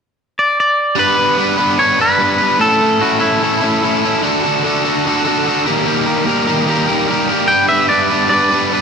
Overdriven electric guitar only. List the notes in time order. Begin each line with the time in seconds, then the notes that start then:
0.96 G3 B3 D4 B4
1.17 B3 D4 B4
1.37 G3 B3 D4 B4
1.58 G3 B3 D4 B4
1.78 G3 B3 D4 B4
1.99 G3 B3 D4 B4
2.18 G3 B3 D4
2.22 B4
2.38 B3 B4
2.42 D4
2.59 A2 A3 C#4 E4 A4
2.79 C#4 E4 A4
3.00 A3 C#4 E4 A4
3.20 A2 A3 C#4 E4 A4
3.41 A3 C#4 E4 A4
3.61 A2 A3 C#4 E4 A4
3.81 A3 C#4 E4 A4
4.03 C#4 E4 A4
4.22 D3 D4 F#4 A4
4.44 D4 F#4 A4
4.64 D3 D4 F#4 A4
4.85 D3 D4 F#4 A4
5.05 D3 D4 F#4 A4
5.24 D3 D4 F#4 A4
5.45 D3 D4 F#4 A4
5.66 D#3 G3 A#3 G4 A#4
5.85 D#3 G3 A#3 G4 A#4
6.06 G3 G4 A#4
6.25 G3 A#3 G4 A#4
6.47 D#3 G3 A#3 G4 A#4
6.67 G3 A#3 G4 A#4
6.87 D#3 G3 A#3 G4 A#4
7.07 G3 A#3 G4 A#4
7.29 G3 G4 A#4
7.48 G3 B3 D4 B4
7.68 B3 D4 B4
7.90 G3 B3 D4 B4
8.09 B3 D4 B4
8.13 G3
8.30 G3 B3 D4 B4
8.51 G3 B3 D4 B4
8.71 G3 B3 D4 B4